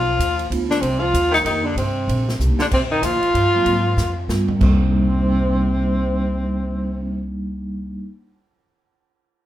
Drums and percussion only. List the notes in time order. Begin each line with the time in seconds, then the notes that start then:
0.20 hi-hat pedal, ride
0.39 ride
0.52 ride
0.71 snare
0.83 ride
1.14 hi-hat pedal, ride
1.34 snare, ride
1.46 ride
1.78 ride
2.09 ride
2.29 snare
2.40 hi-hat pedal, mid tom
2.59 snare
2.71 kick, crash
3.03 hi-hat pedal, ride
3.23 ride
3.35 ride
3.66 ride
3.98 snare, hi-hat pedal
4.29 snare, hi-hat pedal
4.48 floor tom
4.61 kick, floor tom, china